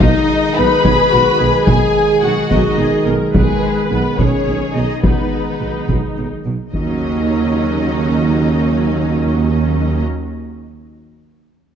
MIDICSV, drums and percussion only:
0, 0, Header, 1, 2, 480
1, 0, Start_track
1, 0, Time_signature, 6, 3, 24, 8
1, 0, Key_signature, -6, "minor"
1, 0, Tempo, 560748
1, 5760, Tempo, 555556
1, 10099, End_track
2, 0, Start_track
2, 0, Title_t, "Taiko and cinematic ensemble drums"
2, 3, Note_on_c, 9, 41, 83
2, 88, Note_off_c, 9, 41, 0
2, 724, Note_on_c, 9, 41, 71
2, 810, Note_off_c, 9, 41, 0
2, 1431, Note_on_c, 9, 41, 82
2, 1517, Note_off_c, 9, 41, 0
2, 2147, Note_on_c, 9, 41, 69
2, 2233, Note_off_c, 9, 41, 0
2, 2863, Note_on_c, 9, 41, 79
2, 2949, Note_off_c, 9, 41, 0
2, 3583, Note_on_c, 9, 41, 66
2, 3669, Note_off_c, 9, 41, 0
2, 4310, Note_on_c, 9, 41, 78
2, 4396, Note_off_c, 9, 41, 0
2, 5040, Note_on_c, 9, 41, 59
2, 5126, Note_off_c, 9, 41, 0
2, 5767, Note_on_c, 9, 41, 42
2, 5853, Note_off_c, 9, 41, 0
2, 10099, End_track
0, 0, End_of_file